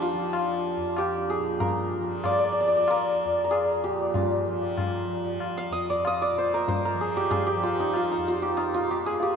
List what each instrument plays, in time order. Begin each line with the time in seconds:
Already playing: tanpura F2 A#2 F3, santur D4 G4 A#4
0.02 santur F4
0.13 tanpura F3
0.33 tabla na
0.77 tanpura F2
0.96 santur G4, tabla na
1.30 santur G#4
1.38 tanpura A#2
1.60 santur A#4, tabla tin, tabla ge
1.99 tanpura F3
2.24 santur D5, tabla na, tabla ge
2.32 santur D5
2.39 santur D5
2.44 santur D5
2.52 santur D5
2.60 tanpura F3, santur D5
2.68 santur D5
2.77 santur D5
2.88 santur A#4, tabla na
3.25 tanpura F2
3.44 santur A#4
3.51 santur G#4, tabla na
3.84 tanpura A#2, santur G4
4.14 santur F4, tabla tin, tabla ge
4.47 tanpura F3
4.78 tabla na, tabla ge
5.07 tanpura F3
5.40 tabla na
5.58 santur F5
5.69 tanpura F2, santur D#5
5.90 santur D5
6.05 santur D#5, tabla na
6.22 santur D5
6.32 tanpura A#2
6.38 santur C5
6.54 santur A#4
6.68 santur C5, tabla tin, tabla ge
6.85 santur A#4
6.94 tanpura F3
7.01 santur G#4
7.17 santur G4
7.31 santur G#4, tabla na, tabla ge
7.47 santur G4
7.55 tanpura F3
7.63 santur F4
7.80 santur D#4
7.94 santur F4, tabla na
8.11 santur D#4
8.17 tanpura F2
8.28 santur F4
8.42 santur G4
8.57 santur D#4, tabla na
8.74 santur F4
8.79 tanpura A#2
8.91 santur G4
9.06 santur G#4
9.20 santur G4, tabla tin